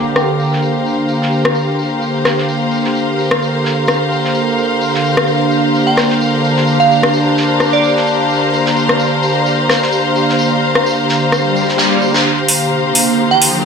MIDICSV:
0, 0, Header, 1, 7, 480
1, 0, Start_track
1, 0, Key_signature, -2, "minor"
1, 0, Tempo, 465116
1, 1126, Time_signature, 4, 2, 24, 8
1, 14087, End_track
2, 0, Start_track
2, 0, Title_t, "Synth bell"
2, 0, Program_c, 0, 98
2, 6056, Note_on_c, 0, 79, 84
2, 6216, Note_off_c, 0, 79, 0
2, 7017, Note_on_c, 0, 77, 84
2, 7176, Note_off_c, 0, 77, 0
2, 7979, Note_on_c, 0, 74, 84
2, 8326, Note_off_c, 0, 74, 0
2, 13738, Note_on_c, 0, 79, 87
2, 13897, Note_off_c, 0, 79, 0
2, 14087, End_track
3, 0, Start_track
3, 0, Title_t, "String section"
3, 0, Program_c, 1, 48
3, 0, Note_on_c, 1, 67, 70
3, 0, Note_on_c, 1, 72, 80
3, 0, Note_on_c, 1, 77, 79
3, 0, Note_on_c, 1, 82, 67
3, 14087, Note_off_c, 1, 67, 0
3, 14087, Note_off_c, 1, 72, 0
3, 14087, Note_off_c, 1, 77, 0
3, 14087, Note_off_c, 1, 82, 0
3, 14087, End_track
4, 0, Start_track
4, 0, Title_t, "Analog synth pad"
4, 0, Program_c, 2, 89
4, 0, Note_on_c, 2, 50, 82
4, 0, Note_on_c, 2, 58, 76
4, 0, Note_on_c, 2, 67, 87
4, 4951, Note_off_c, 2, 67, 0
4, 4966, Note_on_c, 2, 62, 90
4, 12604, Note_off_c, 2, 58, 0
4, 12605, Note_off_c, 2, 50, 0
4, 12631, Note_off_c, 2, 62, 0
4, 12644, Note_on_c, 2, 50, 81
4, 12644, Note_on_c, 2, 67, 89
4, 12645, Note_on_c, 2, 58, 74
4, 14087, Note_off_c, 2, 50, 0
4, 14087, Note_off_c, 2, 58, 0
4, 14087, Note_off_c, 2, 67, 0
4, 14087, End_track
5, 0, Start_track
5, 0, Title_t, "Riser"
5, 0, Program_c, 3, 103
5, 12645, Note_on_c, 3, 60, 78
5, 14087, Note_off_c, 3, 60, 0
5, 14087, End_track
6, 0, Start_track
6, 0, Title_t, "Swell"
6, 0, Program_c, 4, 103
6, 11685, Note_on_c, 4, 60, 74
6, 12646, Note_off_c, 4, 60, 0
6, 14087, End_track
7, 0, Start_track
7, 0, Title_t, "Drums"
7, 165, Note_on_c, 9, 37, 56
7, 167, Note_on_c, 9, 54, 74
7, 268, Note_off_c, 9, 37, 0
7, 271, Note_off_c, 9, 54, 0
7, 409, Note_on_c, 9, 54, 68
7, 513, Note_off_c, 9, 54, 0
7, 544, Note_on_c, 9, 38, 33
7, 643, Note_on_c, 9, 54, 87
7, 647, Note_off_c, 9, 38, 0
7, 747, Note_off_c, 9, 54, 0
7, 890, Note_on_c, 9, 54, 67
7, 993, Note_off_c, 9, 54, 0
7, 1120, Note_on_c, 9, 54, 87
7, 1223, Note_off_c, 9, 54, 0
7, 1261, Note_on_c, 9, 38, 45
7, 1364, Note_off_c, 9, 38, 0
7, 1364, Note_on_c, 9, 54, 70
7, 1467, Note_off_c, 9, 54, 0
7, 1497, Note_on_c, 9, 37, 65
7, 1596, Note_on_c, 9, 54, 76
7, 1600, Note_off_c, 9, 37, 0
7, 1699, Note_off_c, 9, 54, 0
7, 1843, Note_on_c, 9, 54, 64
7, 1946, Note_off_c, 9, 54, 0
7, 2085, Note_on_c, 9, 54, 75
7, 2188, Note_off_c, 9, 54, 0
7, 2322, Note_on_c, 9, 38, 55
7, 2325, Note_on_c, 9, 37, 60
7, 2325, Note_on_c, 9, 54, 64
7, 2425, Note_off_c, 9, 38, 0
7, 2428, Note_off_c, 9, 37, 0
7, 2429, Note_off_c, 9, 54, 0
7, 2456, Note_on_c, 9, 38, 42
7, 2559, Note_off_c, 9, 38, 0
7, 2567, Note_on_c, 9, 54, 89
7, 2670, Note_off_c, 9, 54, 0
7, 2800, Note_on_c, 9, 54, 66
7, 2903, Note_off_c, 9, 54, 0
7, 2935, Note_on_c, 9, 38, 34
7, 3038, Note_off_c, 9, 38, 0
7, 3045, Note_on_c, 9, 54, 75
7, 3148, Note_off_c, 9, 54, 0
7, 3291, Note_on_c, 9, 54, 67
7, 3394, Note_off_c, 9, 54, 0
7, 3418, Note_on_c, 9, 37, 68
7, 3521, Note_off_c, 9, 37, 0
7, 3532, Note_on_c, 9, 54, 73
7, 3636, Note_off_c, 9, 54, 0
7, 3766, Note_on_c, 9, 38, 51
7, 3769, Note_on_c, 9, 54, 63
7, 3869, Note_off_c, 9, 38, 0
7, 3872, Note_off_c, 9, 54, 0
7, 3998, Note_on_c, 9, 54, 83
7, 4007, Note_on_c, 9, 37, 59
7, 4101, Note_off_c, 9, 54, 0
7, 4110, Note_off_c, 9, 37, 0
7, 4248, Note_on_c, 9, 54, 63
7, 4351, Note_off_c, 9, 54, 0
7, 4381, Note_on_c, 9, 38, 38
7, 4484, Note_off_c, 9, 38, 0
7, 4485, Note_on_c, 9, 54, 87
7, 4588, Note_off_c, 9, 54, 0
7, 4729, Note_on_c, 9, 54, 69
7, 4832, Note_off_c, 9, 54, 0
7, 4967, Note_on_c, 9, 54, 82
7, 5070, Note_off_c, 9, 54, 0
7, 5100, Note_on_c, 9, 38, 42
7, 5202, Note_on_c, 9, 54, 67
7, 5203, Note_off_c, 9, 38, 0
7, 5305, Note_off_c, 9, 54, 0
7, 5338, Note_on_c, 9, 37, 67
7, 5441, Note_off_c, 9, 37, 0
7, 5442, Note_on_c, 9, 54, 77
7, 5545, Note_off_c, 9, 54, 0
7, 5690, Note_on_c, 9, 54, 70
7, 5793, Note_off_c, 9, 54, 0
7, 5929, Note_on_c, 9, 54, 86
7, 6032, Note_off_c, 9, 54, 0
7, 6163, Note_on_c, 9, 38, 56
7, 6166, Note_on_c, 9, 37, 61
7, 6169, Note_on_c, 9, 54, 65
7, 6266, Note_off_c, 9, 38, 0
7, 6269, Note_off_c, 9, 37, 0
7, 6272, Note_off_c, 9, 54, 0
7, 6293, Note_on_c, 9, 38, 35
7, 6396, Note_off_c, 9, 38, 0
7, 6411, Note_on_c, 9, 54, 81
7, 6514, Note_off_c, 9, 54, 0
7, 6650, Note_on_c, 9, 54, 64
7, 6753, Note_off_c, 9, 54, 0
7, 6775, Note_on_c, 9, 38, 32
7, 6878, Note_off_c, 9, 38, 0
7, 6881, Note_on_c, 9, 54, 88
7, 6984, Note_off_c, 9, 54, 0
7, 7131, Note_on_c, 9, 54, 63
7, 7235, Note_off_c, 9, 54, 0
7, 7258, Note_on_c, 9, 37, 65
7, 7362, Note_off_c, 9, 37, 0
7, 7363, Note_on_c, 9, 54, 84
7, 7467, Note_off_c, 9, 54, 0
7, 7605, Note_on_c, 9, 38, 48
7, 7613, Note_on_c, 9, 54, 60
7, 7708, Note_off_c, 9, 38, 0
7, 7717, Note_off_c, 9, 54, 0
7, 7846, Note_on_c, 9, 37, 56
7, 7847, Note_on_c, 9, 54, 80
7, 7949, Note_off_c, 9, 37, 0
7, 7951, Note_off_c, 9, 54, 0
7, 8087, Note_on_c, 9, 54, 67
7, 8190, Note_off_c, 9, 54, 0
7, 8220, Note_on_c, 9, 38, 33
7, 8323, Note_off_c, 9, 38, 0
7, 8326, Note_on_c, 9, 54, 89
7, 8429, Note_off_c, 9, 54, 0
7, 8568, Note_on_c, 9, 54, 63
7, 8671, Note_off_c, 9, 54, 0
7, 8807, Note_on_c, 9, 54, 88
7, 8910, Note_off_c, 9, 54, 0
7, 8933, Note_on_c, 9, 38, 44
7, 9036, Note_off_c, 9, 38, 0
7, 9045, Note_on_c, 9, 54, 62
7, 9148, Note_off_c, 9, 54, 0
7, 9177, Note_on_c, 9, 37, 60
7, 9281, Note_off_c, 9, 37, 0
7, 9283, Note_on_c, 9, 54, 79
7, 9386, Note_off_c, 9, 54, 0
7, 9524, Note_on_c, 9, 54, 67
7, 9627, Note_off_c, 9, 54, 0
7, 9763, Note_on_c, 9, 54, 80
7, 9866, Note_off_c, 9, 54, 0
7, 10005, Note_on_c, 9, 37, 57
7, 10006, Note_on_c, 9, 38, 53
7, 10007, Note_on_c, 9, 54, 65
7, 10109, Note_off_c, 9, 37, 0
7, 10109, Note_off_c, 9, 38, 0
7, 10111, Note_off_c, 9, 54, 0
7, 10136, Note_on_c, 9, 38, 40
7, 10240, Note_off_c, 9, 38, 0
7, 10241, Note_on_c, 9, 54, 86
7, 10344, Note_off_c, 9, 54, 0
7, 10482, Note_on_c, 9, 54, 62
7, 10586, Note_off_c, 9, 54, 0
7, 10620, Note_on_c, 9, 38, 34
7, 10720, Note_on_c, 9, 54, 81
7, 10724, Note_off_c, 9, 38, 0
7, 10824, Note_off_c, 9, 54, 0
7, 11098, Note_on_c, 9, 37, 61
7, 11201, Note_off_c, 9, 37, 0
7, 11210, Note_on_c, 9, 54, 86
7, 11313, Note_off_c, 9, 54, 0
7, 11443, Note_on_c, 9, 38, 47
7, 11448, Note_on_c, 9, 54, 60
7, 11547, Note_off_c, 9, 38, 0
7, 11552, Note_off_c, 9, 54, 0
7, 11686, Note_on_c, 9, 37, 52
7, 11689, Note_on_c, 9, 54, 80
7, 11789, Note_off_c, 9, 37, 0
7, 11792, Note_off_c, 9, 54, 0
7, 11933, Note_on_c, 9, 54, 67
7, 12036, Note_off_c, 9, 54, 0
7, 12058, Note_on_c, 9, 38, 35
7, 12159, Note_off_c, 9, 38, 0
7, 12159, Note_on_c, 9, 38, 93
7, 12164, Note_on_c, 9, 54, 80
7, 12262, Note_off_c, 9, 38, 0
7, 12267, Note_off_c, 9, 54, 0
7, 12402, Note_on_c, 9, 54, 57
7, 12505, Note_off_c, 9, 54, 0
7, 12533, Note_on_c, 9, 38, 94
7, 12533, Note_on_c, 9, 54, 70
7, 12636, Note_off_c, 9, 38, 0
7, 12636, Note_off_c, 9, 54, 0
7, 12885, Note_on_c, 9, 46, 100
7, 12988, Note_off_c, 9, 46, 0
7, 13365, Note_on_c, 9, 46, 101
7, 13468, Note_off_c, 9, 46, 0
7, 13845, Note_on_c, 9, 46, 104
7, 13949, Note_off_c, 9, 46, 0
7, 14087, End_track
0, 0, End_of_file